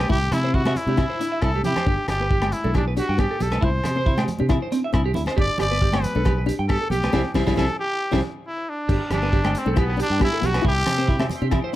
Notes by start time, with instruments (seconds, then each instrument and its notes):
Already playing: trumpet G4
0.00 high conga
0.09 fingered electric bass C2, nylon-string guitar E4, clean electric guitar E4, trumpet G4, kick
0.31 fingered electric bass C3, clean electric guitar E4, trumpet E4, cross-stick, closed hi-hat, high conga, low conga, low agogo
0.44 nylon-string guitar C4, clean electric guitar C5
0.54 clean electric guitar E4, trumpet F#4, kick
0.65 nylon-string guitar C4, clean electric guitar E5, cross-stick, high conga, low agogo
0.76 trumpet E4, closed hi-hat, low conga
0.87 fingered electric bass C3, nylon-string guitar D4, clean electric guitar G4, high conga
0.97 nylon-string guitar E4, clean electric guitar E4, kick, cross-stick, high conga, low conga, low agogo
1.10 clean electric guitar C5
1.20 nylon-string guitar D4, clean electric guitar E4, closed hi-hat
1.32 clean electric guitar E5
1.42 fingered electric bass C2, nylon-string guitar C4, clean electric guitar E4, trumpet A4, kick, cross-stick, low agogo
1.55 clean electric guitar G4, high conga
1.63 fingered electric bass C3, nylon-string guitar C4, clean electric guitar E4, trumpet G4, closed hi-hat, low conga
1.76 clean electric guitar C5, cross-stick, low conga, low agogo
1.86 fingered electric bass G1, nylon-string guitar D4, clean electric guitar G4, kick
2.08 fingered electric bass G1, trumpet G4, cross-stick, closed hi-hat, low conga, low agogo
2.20 nylon-string guitar B3, clean electric guitar B4
2.31 clean electric guitar G4, kick
2.42 nylon-string guitar B3, clean electric guitar G5, cross-stick, high conga, low agogo
2.52 trumpet E4, closed hi-hat
2.64 fingered electric bass B1, nylon-string guitar D4, clean electric guitar A4, high conga
2.74 trumpet D4, nylon-string guitar E4, clean electric guitar G4, kick, cross-stick, low conga, low agogo
2.88 clean electric guitar B4
2.96 nylon-string guitar D4, trumpet F#4, clean electric guitar G4, closed hi-hat
3.09 fingered electric bass G2, clean electric guitar G5
3.18 nylon-string guitar B3, clean electric guitar G4, trumpet G4, kick, cross-stick, low agogo
3.31 clean electric guitar A4
3.40 fingered electric bass B1, nylon-string guitar B3, clean electric guitar G4, trumpet A4, closed hi-hat, low conga
3.51 clean electric guitar B4, cross-stick, high conga, low agogo
3.61 fingered electric bass C2, clean electric guitar E4, nylon-string guitar E4, trumpet C5, kick
3.84 fingered electric bass C3, muted clean electric guitar stroke, cross-stick, closed hi-hat, low conga, low agogo
3.96 nylon-string guitar C4, clean electric guitar C5
4.06 clean electric guitar E4, kick
4.17 nylon-string guitar C4, clean electric guitar G5, cross-stick, high conga, low agogo
4.28 closed hi-hat, low conga
4.39 fingered electric bass C3, nylon-string guitar D4, clean electric guitar G4, high conga
4.49 nylon-string guitar E4, clean electric guitar E4, kick, cross-stick, low conga, low agogo
4.62 clean electric guitar C5
4.72 clean electric guitar C4, nylon-string guitar D4, closed hi-hat
4.84 clean electric guitar E5
4.93 fingered electric bass C2, nylon-string guitar C4, clean electric guitar E4, kick, cross-stick, low agogo
5.06 clean electric guitar G4
5.14 fingered electric bass D2, nylon-string guitar C4, clean electric guitar E4, closed hi-hat, low conga
5.26 clean electric guitar C5, cross-stick, high conga, low agogo
5.37 fingered electric bass G1, nylon-string guitar D4, clean electric guitar G4, trumpet D5, kick
5.58 fingered electric bass G1, clean electric guitar G4, trumpet D5, cross-stick, closed hi-hat, low conga, low agogo
5.71 nylon-string guitar B3, clean electric guitar B4
5.82 clean electric guitar G4, kick
5.92 nylon-string guitar B3, clean electric guitar G5, cross-stick, high conga, low agogo
6.02 trumpet B4, closed hi-hat, low conga
6.15 fingered electric bass B1, nylon-string guitar D4, clean electric guitar A4, high conga
6.25 clean electric guitar G4, muted nylon-string guitar stroke, kick, cross-stick, low conga, low agogo
6.38 clean electric guitar B4
6.46 nylon-string guitar D4, clean electric guitar G4, closed hi-hat
6.59 fingered electric bass G2, clean electric guitar G5
6.68 nylon-string guitar B3, clean electric guitar G4, trumpet A4, kick, cross-stick, low agogo
6.82 clean electric guitar A4
6.90 fingered electric bass B1, nylon-string guitar B3, trumpet G4, clean electric guitar G4, closed hi-hat, low conga
7.03 clean electric guitar B4, cross-stick, high conga, low agogo
7.12 fingered electric bass C2, nylon-string guitar G3 C4 E4, clean electric guitar E4 G4 C5, kick, snare, low conga, low agogo
7.34 fingered electric bass C2, nylon-string guitar G3 C4 E4, clean electric guitar E4 G4 C5, kick, snare, low conga, low agogo
7.46 fingered electric bass C2, nylon-string guitar G3 C4 E4, clean electric guitar E4 G4 C5, kick, snare, low conga, low agogo
7.56 fingered electric bass C2, nylon-string guitar G3 C4 E4, clean electric guitar E4 G4 C5, trumpet A4, kick, snare, low conga, low agogo
7.80 trumpet G4
8.11 fingered electric bass C2, nylon-string guitar G3 C4 E4, clean electric guitar E4 G4 C5, kick, snare, low conga, low agogo
8.47 trumpet E4
8.69 trumpet D4
8.88 fingered electric bass G1, nylon-string guitar D4, clean electric guitar G4, tonewheel organ G5 A5 B5, kick, crash
9.10 fingered electric bass G1, trumpet D4, clean electric guitar G4, cross-stick, closed hi-hat, low conga, low agogo
9.22 nylon-string guitar B3, clean electric guitar B4
9.33 clean electric guitar G4, kick
9.44 nylon-string guitar B3, clean electric guitar G5, cross-stick, high conga, low agogo
9.55 trumpet C4, closed hi-hat
9.65 fingered electric bass B1, nylon-string guitar D4, clean electric guitar A4, high conga
9.71 trumpet C4
9.76 trumpet B3, nylon-string guitar E4, clean electric guitar G4, kick, cross-stick, low conga, low agogo
9.90 clean electric guitar B4
9.97 nylon-string guitar D4, clean electric guitar G4, closed hi-hat
10.02 trumpet D4
10.10 fingered electric bass G2, clean electric guitar G5
10.19 nylon-string guitar B3, clean electric guitar G4, kick, cross-stick, low agogo
10.24 trumpet E4
10.33 clean electric guitar A4
10.41 fingered electric bass B1, nylon-string guitar B3, clean electric guitar G4, closed hi-hat, low conga
10.46 trumpet F#4
10.54 clean electric guitar B4, cross-stick, high conga, low agogo
10.62 fingered electric bass C2, nylon-string guitar E4, clean electric guitar E4, tonewheel organ C6, kick
10.66 trumpet G4, tonewheel organ E5
10.86 fingered electric bass C3, muted clean electric guitar stroke, cross-stick, closed hi-hat, low conga, low agogo
10.98 nylon-string guitar C4, clean electric guitar C5
11.08 clean electric guitar E4, kick
11.19 nylon-string guitar C4, clean electric guitar E5, cross-stick, high conga, low agogo
11.29 closed hi-hat, low conga
11.42 fingered electric bass C3, nylon-string guitar D4, clean electric guitar G4
11.51 nylon-string guitar E4, clean electric guitar E4, kick, cross-stick, low conga, low agogo
11.64 clean electric guitar C5